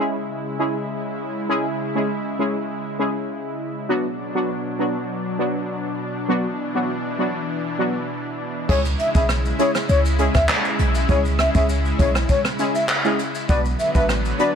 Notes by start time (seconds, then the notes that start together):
Already playing: C#3 G#3 E4
0.00 G#3 C#4 E4 G#4
0.59 G#3 C#4 E4 G#4
1.49 G#3 C#4 E4 G#4
1.95 G#3 C#4 E4 G#4
2.39 G#3 C#4 E4 G#4
2.99 G#3 C#4 E4 G#4
3.89 B2 F#3 B3 D4 F#4
4.35 F#3 B3 D4 F#4
4.79 F#3 B3 D4 F#4
5.39 F#3 B3 D4 F#4
6.28 E3 F#3 B3 D4 F#4
6.74 F#3 B3 D4 F#4
7.18 F#3 B3 D4 F#4
7.79 F#3 B3 D4 F#4
8.69 C#2 C#3 G#3 C#4 E4 G#4 C#5, kick, crash
8.85 shaker
8.99 E5, closed hi-hat, shaker
9.15 B1 G#3 C#4 E4 G#4 E5, kick, shaker
9.29 cross-stick, shaker
9.45 shaker
9.59 G#3 C#4 E4 G#4 C#5, closed hi-hat, shaker
9.75 cross-stick, shaker
9.89 C#2 C#5, shaker
10.05 shaker
10.19 G#3 C#4 E4 G#4, closed hi-hat, shaker
10.35 D2 E5, kick, cross-stick, shaker
10.49 cross-stick, clap, shaker
10.65 shaker
10.79 B1, closed hi-hat, shaker
10.95 shaker
11.09 C#2 G#3 C#4 E4 G#4 C#5, kick, shaker
11.25 shaker
11.39 E5, cross-stick, closed hi-hat, shaker
11.54 C#2 G#3 C#4 E4 G#4 E5, kick, shaker
11.69 shaker
11.85 shaker
11.99 B1 G#3 C#4 E4 G#4 C#5, kick, closed hi-hat, shaker
12.15 cross-stick, shaker
12.29 C#5, kick, shaker
12.45 cross-stick, shaker
12.59 G#3 C#4 E4 G#4, closed hi-hat, shaker
12.75 E5, shaker
12.89 clap, shaker
13.05 G#3 C#4 E4 G#4, shaker
13.19 closed hi-hat, shaker
13.35 shaker
13.49 B1 D3 F#3 B3 D4 F#4 B4 D5, kick, shaker
13.65 shaker
13.79 E5, closed hi-hat, shaker
13.95 A1 B3 D4 F#4 B4 E5, kick, shaker
14.09 cross-stick, shaker
14.25 shaker
14.39 B3 D4 F#4 B4 D5, closed hi-hat, shaker